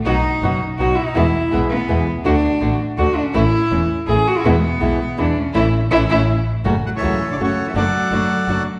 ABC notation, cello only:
X:1
M:3/4
L:1/16
Q:1/4=164
K:A
V:1 name="Cello"
^D6 z2 F2 E D | E4 z2 B,4 z2 | D6 z2 F2 D C | E6 z2 G2 F E |
B,8 D2 C2 | E2 z2 E2 E2 z4 | [K:F#m] z2 F, E,4 D, C,3 E, | F,8- F,2 z2 |]